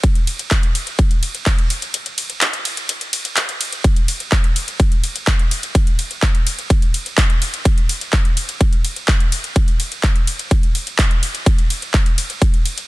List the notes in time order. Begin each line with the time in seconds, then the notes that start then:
0.04 kick, closed hi-hat, ride
0.15 closed hi-hat
0.27 open hi-hat, ride
0.39 closed hi-hat
0.51 kick, clap, closed hi-hat
0.63 closed hi-hat
0.75 open hi-hat, ride
0.87 closed hi-hat
0.99 kick, closed hi-hat, ride
1.11 closed hi-hat
1.23 open hi-hat, ride
1.35 closed hi-hat
1.46 kick, clap, closed hi-hat, ride
1.58 closed hi-hat
1.70 open hi-hat, ride
1.82 closed hi-hat
1.94 closed hi-hat, ride
2.06 closed hi-hat
2.18 open hi-hat, ride
2.30 closed hi-hat
2.41 clap, closed hi-hat, ride
2.53 closed hi-hat
2.65 open hi-hat, ride
2.77 closed hi-hat
2.89 closed hi-hat, ride
3.01 closed hi-hat
3.13 open hi-hat, ride
3.25 closed hi-hat
3.37 clap, closed hi-hat, ride
3.49 closed hi-hat
3.61 open hi-hat, ride
3.73 closed hi-hat
3.84 kick, closed hi-hat, ride
3.96 closed hi-hat
4.08 open hi-hat, ride
4.20 closed hi-hat
4.32 kick, clap, closed hi-hat, ride
4.44 closed hi-hat
4.56 open hi-hat, ride
4.68 closed hi-hat
4.80 kick, closed hi-hat, ride
4.92 closed hi-hat
5.04 open hi-hat, ride
5.16 closed hi-hat
5.27 kick, clap, closed hi-hat, ride
5.39 closed hi-hat
5.51 open hi-hat, ride
5.63 closed hi-hat
5.75 kick, closed hi-hat, ride
5.87 closed hi-hat
5.99 open hi-hat, ride
6.11 closed hi-hat
6.22 kick, clap, closed hi-hat, ride
6.35 closed hi-hat
6.47 open hi-hat, ride
6.59 closed hi-hat
6.70 kick, closed hi-hat, ride
6.82 closed hi-hat
6.94 open hi-hat, ride
7.06 closed hi-hat
7.18 kick, clap, closed hi-hat
7.30 closed hi-hat
7.42 open hi-hat, ride
7.54 closed hi-hat
7.65 kick, closed hi-hat, ride
7.78 closed hi-hat
7.89 open hi-hat, ride
8.01 closed hi-hat
8.13 kick, clap, closed hi-hat, ride
8.25 closed hi-hat
8.37 open hi-hat, ride
8.49 closed hi-hat
8.61 kick, closed hi-hat, ride
8.73 closed hi-hat
8.85 open hi-hat, ride
8.96 closed hi-hat
9.08 kick, clap, closed hi-hat, ride
9.20 closed hi-hat
9.32 open hi-hat, ride
9.44 closed hi-hat
9.56 kick, closed hi-hat, ride
9.68 closed hi-hat
9.80 open hi-hat, ride
9.92 closed hi-hat
10.03 kick, clap, closed hi-hat, ride
10.16 closed hi-hat
10.27 open hi-hat, ride
10.39 closed hi-hat
10.51 kick, closed hi-hat, ride
10.63 closed hi-hat
10.75 open hi-hat, ride
10.87 closed hi-hat
10.99 kick, clap, closed hi-hat, ride
11.11 closed hi-hat
11.23 open hi-hat, ride
11.35 closed hi-hat
11.46 kick, closed hi-hat, ride
11.58 closed hi-hat
11.70 open hi-hat, ride
11.82 closed hi-hat
11.94 kick, clap, closed hi-hat, ride
12.06 closed hi-hat
12.18 open hi-hat, ride
12.30 closed hi-hat
12.42 kick, closed hi-hat, ride
12.54 closed hi-hat
12.66 open hi-hat, ride
12.78 closed hi-hat